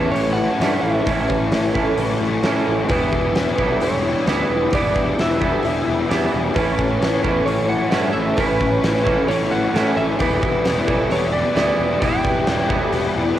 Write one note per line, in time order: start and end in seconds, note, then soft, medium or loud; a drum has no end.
0.00 0.13 A2 medium
0.00 0.59 A2 medium
0.00 0.14 E3 medium
0.00 0.62 E3 medium
0.00 0.14 A3 medium
0.00 0.60 A3 medium
0.00 0.15 C#4 medium
0.00 0.59 C#4 medium
0.00 0.17 E4 medium
0.00 0.65 E4 medium
0.00 0.13 A4 medium
0.00 0.11 B4 medium
0.00 2.87 B4 medium
0.00 0.17 C#5 medium
0.00 2.87 A5 medium
0.00 2.86 C#6 medium
0.12 0.47 A1 medium
0.12 0.60 A2 medium
0.12 0.60 E3 medium
0.12 0.60 G4 medium
0.12 0.37 C#5 medium
0.12 open hi-hat medium
0.16 0.40 A3 medium
0.16 0.38 C#4 medium
0.16 0.37 E4 medium
0.33 0.80 F#5 loud
0.37 0.60 A3 medium
0.37 0.62 C#4 medium
0.37 0.63 E4 medium
0.60 0.77 G2 medium
0.60 1.04 A2 medium
0.60 1.06 E3 medium
0.60 1.06 A3 medium
0.60 1.06 C#4 medium
0.60 1.08 E4 medium
0.60 1.06 A4 medium
0.60 snare loud
0.60 open hi-hat soft
0.81 1.00 A1 medium
0.81 1.70 E5 medium
1.05 1.23 A1 medium
1.05 1.75 A2 medium
1.05 1.52 E3 medium
1.05 1.51 A3 medium
1.05 1.52 C#4 medium
1.05 1.55 E4 medium
1.05 1.28 B4 medium
1.05 kick medium
1.05 open hi-hat medium
1.28 1.46 A1 medium
1.28 1.75 C#5 medium
1.28 kick medium
1.52 1.85 A1 medium
1.52 1.99 E3 medium
1.52 1.98 A3 medium
1.52 1.99 C#4 medium
1.52 2.01 E4 medium
1.52 snare loud
1.52 open hi-hat medium
1.74 2.43 A3 medium
1.74 2.43 C#4 medium
1.74 2.46 E4 medium
1.74 1.97 A4 medium
1.74 kick medium
1.78 2.41 A2 medium
1.78 2.44 E3 medium
1.97 2.14 A1 medium
1.97 2.44 A2 medium
1.97 2.43 E3 medium
1.97 2.22 A3 medium
1.97 2.20 C#4 medium
1.97 2.20 E4 medium
1.97 2.43 G4 medium
1.97 open hi-hat medium
2.20 2.38 A1 medium
2.20 2.43 A3 medium
2.20 2.44 C#4 medium
2.20 2.45 E4 medium
2.43 2.88 A2 medium
2.43 2.61 A2 medium
2.43 2.88 E3 medium
2.43 2.88 A3 medium
2.43 2.89 C#4 medium
2.43 2.91 E4 medium
2.43 2.88 A4 medium
2.43 snare loud
2.43 open hi-hat soft
2.67 2.84 A1 medium
2.88 3.06 E1 medium
2.88 3.35 E3 medium
2.88 3.37 G3 medium
2.88 3.36 B3 loud
2.88 6.52 D4 medium
2.88 3.38 E4 loud
2.88 3.57 G4 medium
2.88 3.82 B4 medium
2.88 6.52 G5 medium
2.88 6.52 E6 medium
2.88 kick loud
2.88 open hi-hat medium
3.12 3.29 E1 medium
3.12 3.60 B4 medium
3.12 kick medium
3.34 3.51 E1 medium
3.34 3.80 E3 medium
3.34 3.80 G3 medium
3.34 3.81 B3 medium
3.34 snare loud
3.34 open hi-hat soft
3.39 3.82 E4 medium
3.57 3.75 B1 medium
3.57 4.27 G3 medium
3.57 4.28 B3 medium
3.57 4.29 E4 medium
3.57 3.79 A4 medium
3.57 kick medium
3.62 4.26 E3 medium
3.80 4.14 E1 medium
3.80 4.25 E3 medium
3.80 4.03 G3 medium
3.80 4.03 B3 medium
3.80 4.01 E4 medium
3.80 4.26 G4 medium
3.80 4.28 C#5 medium
3.80 open hi-hat medium
4.01 4.25 G3 medium
4.01 4.27 B3 medium
4.01 4.27 E4 medium
4.25 4.43 D2 medium
4.25 4.71 E3 medium
4.25 4.71 G3 medium
4.25 4.73 B3 medium
4.25 4.73 E4 medium
4.25 4.95 B4 medium
4.25 4.74 B4 medium
4.25 snare loud
4.25 open hi-hat soft
4.50 4.66 E1 medium
4.70 4.89 E1 medium
4.70 5.16 E3 medium
4.70 5.16 G3 medium
4.70 5.18 B3 loud
4.70 5.18 E4 loud
4.70 4.94 G4 medium
4.70 kick loud
4.70 open hi-hat medium
4.75 5.20 D5 medium
4.95 5.12 E1 medium
4.95 5.39 B4 medium
4.95 kick medium
5.16 5.52 E1 medium
5.16 5.62 E3 medium
5.16 5.63 G3 medium
5.16 5.64 B3 medium
5.16 5.65 E4 medium
5.16 snare loud
5.16 open hi-hat medium
5.20 6.29 E5 medium
5.39 6.09 G3 medium
5.39 6.11 B3 medium
5.39 6.13 E4 medium
5.39 5.63 A4 medium
5.39 kick medium
5.44 6.09 E3 medium
5.63 5.81 E1 medium
5.63 6.09 E3 medium
5.63 5.88 G3 medium
5.63 5.86 B3 medium
5.63 5.86 E4 medium
5.63 6.09 G4 medium
5.63 open hi-hat soft
5.86 6.04 E1 medium
5.86 6.10 G3 medium
5.86 6.11 B3 medium
5.86 6.12 E4 medium
6.08 6.27 E2 medium
6.08 6.55 E3 medium
6.08 6.54 G3 medium
6.08 6.56 B3 medium
6.08 6.54 B4 medium
6.08 snare loud
6.08 open hi-hat soft
6.12 6.57 E4 medium
6.34 6.50 E1 medium
6.54 6.72 A1 medium
6.54 7.45 A2 medium
6.54 6.99 E3 medium
6.54 7.01 A3 loud
6.54 7.02 C#4 medium
6.54 7.03 E4 medium
6.54 6.77 B4 medium
6.54 7.45 B4 medium
6.54 10.17 B4 medium
6.54 8.37 A5 medium
6.54 10.17 C#6 medium
6.54 kick loud
6.54 open hi-hat soft
6.78 6.95 A1 medium
6.78 7.49 C#5 medium
6.78 kick medium
6.99 7.17 A1 medium
6.99 7.46 E3 medium
6.99 7.46 A3 medium
6.99 7.46 C#4 medium
6.99 7.48 E4 medium
6.99 snare loud
6.99 open hi-hat soft
7.23 7.40 E2 medium
7.23 7.88 A2 medium
7.23 7.91 E3 medium
7.23 7.91 A3 medium
7.23 7.90 C#4 medium
7.23 7.94 E4 medium
7.23 7.46 A4 medium
7.23 kick medium
7.46 7.79 A1 medium
7.46 7.92 A2 medium
7.46 7.90 E3 medium
7.46 7.71 A3 medium
7.46 7.70 C#4 medium
7.46 7.69 E4 medium
7.46 7.90 G4 medium
7.46 7.69 C#5 medium
7.46 open hi-hat medium
7.69 7.91 A3 medium
7.69 7.92 C#4 medium
7.69 7.93 E4 medium
7.69 8.13 F#5 medium
7.90 8.09 G2 medium
7.90 8.35 A2 medium
7.90 8.37 E3 medium
7.90 8.37 A3 medium
7.90 8.37 C#4 medium
7.90 8.37 A4 medium
7.90 snare loud
7.90 open hi-hat medium
7.94 8.39 E4 medium
8.13 8.31 A1 medium
8.13 8.37 E5 medium
8.36 8.54 A1 medium
8.36 9.05 A2 medium
8.36 8.80 E3 medium
8.36 8.81 A3 medium
8.36 8.81 C#4 loud
8.36 8.83 E4 loud
8.36 8.59 B4 medium
8.36 9.28 B4 medium
8.36 10.19 B5 medium
8.36 kick medium
8.36 open hi-hat medium
8.59 8.77 A1 medium
8.59 9.05 C#5 medium
8.59 kick medium
8.81 9.16 A1 medium
8.81 9.29 E3 medium
8.81 9.28 A3 medium
8.81 9.29 C#4 medium
8.81 9.30 E4 medium
8.81 snare loud
8.81 open hi-hat medium
8.97 snare soft
9.04 9.73 E3 medium
9.04 9.73 A3 medium
9.04 9.73 C#4 medium
9.04 9.77 E4 medium
9.04 9.28 A4 medium
9.04 kick medium
9.08 9.72 A2 medium
9.28 9.45 A1 medium
9.28 9.74 A2 medium
9.28 9.74 E3 medium
9.28 9.53 A3 medium
9.28 9.52 C#4 medium
9.28 9.51 E4 medium
9.28 9.74 G4 medium
9.28 9.52 C#5 medium
9.28 open hi-hat medium
9.51 9.68 A1 medium
9.51 9.74 A3 medium
9.51 9.75 C#4 medium
9.51 9.76 E4 medium
9.51 9.97 F#5 medium
9.73 10.18 A2 medium
9.73 9.90 A2 medium
9.73 10.20 E3 medium
9.73 10.19 A3 medium
9.73 10.19 C#4 medium
9.73 10.23 E4 medium
9.73 10.19 A4 medium
9.73 snare loud
9.73 open hi-hat soft
9.96 10.13 A1 medium
9.96 10.21 E5 medium
10.19 10.37 E1 medium
10.19 10.64 E3 medium
10.19 10.66 G3 loud
10.19 10.67 B3 loud
10.19 10.90 G4 loud
10.19 11.12 B4 medium
10.19 13.39 D5 medium
10.19 13.39 G5 medium
10.19 kick loud
10.19 open hi-hat medium
10.23 10.67 E4 loud
10.23 12.02 E6 medium
10.42 10.59 E1 medium
10.42 10.86 B4 medium
10.42 kick medium
10.64 10.81 E1 medium
10.64 11.09 E3 medium
10.64 11.10 G3 medium
10.64 11.11 B3 medium
10.64 11.12 E4 medium
10.64 snare loud
10.64 open hi-hat soft
10.87 11.05 B1 medium
10.87 11.55 G3 medium
10.87 11.55 B3 medium
10.87 11.54 E4 medium
10.87 11.10 A4 medium
10.87 kick medium
10.91 11.53 E3 medium
11.10 11.43 E1 medium
11.10 11.55 E3 medium
11.10 11.34 G3 medium
11.10 11.33 B3 medium
11.10 11.31 E4 medium
11.10 11.56 G4 medium
11.10 11.32 C#5 medium
11.10 open hi-hat soft
11.33 11.56 G3 medium
11.33 11.57 B3 medium
11.33 11.57 E4 medium
11.33 11.56 D5 medium
11.55 11.72 D2 medium
11.55 12.01 E3 medium
11.55 12.01 G3 medium
11.55 12.03 B3 medium
11.55 12.03 E4 medium
11.55 12.02 B4 medium
11.55 12.04 D5 medium
11.55 snare loud
11.55 open hi-hat soft
11.79 11.96 E1 medium
12.01 12.18 E1 medium
12.01 12.46 E3 medium
12.01 12.47 G3 loud
12.01 12.48 B3 medium
12.01 12.49 E4 loud
12.01 12.24 G4 medium
12.01 13.35 G5 medium
12.01 13.39 F#6 medium
12.01 kick medium
12.01 open hi-hat soft
12.24 12.41 E1 medium
12.24 12.70 B4 medium
12.24 kick medium
12.47 12.80 E1 medium
12.47 12.91 E3 medium
12.47 12.92 G3 medium
12.47 12.93 B3 medium
12.47 12.94 E4 medium
12.47 snare loud
12.47 open hi-hat soft
12.69 13.35 E3 medium
12.69 13.37 G3 medium
12.69 13.37 B3 medium
12.69 13.37 E4 medium
12.69 12.93 A4 medium
12.69 kick medium
12.92 13.09 E1 medium
12.92 13.37 E3 medium
12.92 13.18 G3 medium
12.92 13.16 B3 medium
12.92 13.15 E4 medium
12.92 13.39 G4 medium
12.92 open hi-hat medium
13.16 13.32 E1 medium
13.16 13.38 G3 medium
13.16 13.38 B3 medium
13.16 13.39 E4 medium